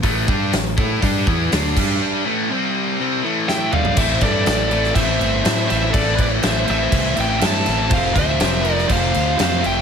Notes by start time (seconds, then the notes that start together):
0.03 A1 A2 E3 A3, kick, open hi-hat
0.28 G2 G3 D4 G4, kick
0.53 A1 A2 E3, snare, open hi-hat
0.78 A2 A3 E4 A4, kick
1.02 G2 G3 D4 G4, kick, open hi-hat
1.27 E2 E3 B3 E4, kick
1.52 D2 D3 A3 D4, snare, open hi-hat
1.66 snare
1.76 G2 G3 D4 G4, kick, crash
2.25 A2 E3 A3
2.50 C3 G3 C4
2.99 C3 G3 C4
3.23 A2 E3 A3
3.49 E5 G5, snare
3.72 G2 D3 G3 D5 F5, mid tom
3.85 floor tom
3.97 A1 A2 E3 A3 C4 E4 E5, kick, crash
4.01 C5
4.21 G2 A2 E3 A3 C4 E4 A4 D5, kick, crash
4.46 A1 A2 E3 A3 C4 E4, snare, crash
4.70 A2 E3 A3 C4 E4, crash
4.84 snare
4.94 A1 A2 E3 A3 C4 E4 C5 E5, kick, crash
5.19 G1 A2 E3 A3 C4 E4, crash
5.43 A2 E3 A3 C4 E4 C5 E5, snare, crash
5.67 A1 A2 E3 A3 C4 E4 C5 E5, snare, crash
5.91 A2 E3 A3 C4 E4 A4 D5, kick, crash
5.95 A1
6.16 A2 E3 A3 C4 E4 B4, kick, crash
6.21 D5
6.41 A1 A2 E3 A3 C4 E4 C5, snare, crash
6.45 E5
6.66 A1 A2 E3 A3 C4 E4 C5, crash
6.71 E5
6.91 C2 A2 E3 A3 C4 E4, kick, crash
7.15 A1 A2 E3 A3 C4 E4 E5, crash
7.20 G5
7.40 A2 E3 A3 C4 E4 E5, snare, crash
7.44 G2 A5
7.65 A1 A2 E3 A3 C4 E4, snare, crash
7.90 F1 F2 C3 F3 A3 C4 F4 C5 F5, kick, crash
8.14 D2 F3 A3 C4 F4 C5, kick, crash
8.19 E5
8.39 F1 F3 A3 C4 F4, snare, crash
8.64 F2 C3 F3 A3 C4 F4 A#4, crash
8.74 D5
8.78 snare
8.88 F1 F3 A3 C4 F4 C5, kick, crash
8.92 F5
9.13 D2 F3 A3 C4 F4, crash
9.37 F2 F3 A3 C4 F4 C5 F5, snare, crash
9.62 F1 F3 A3 C4 F4 E5, crash
9.66 G5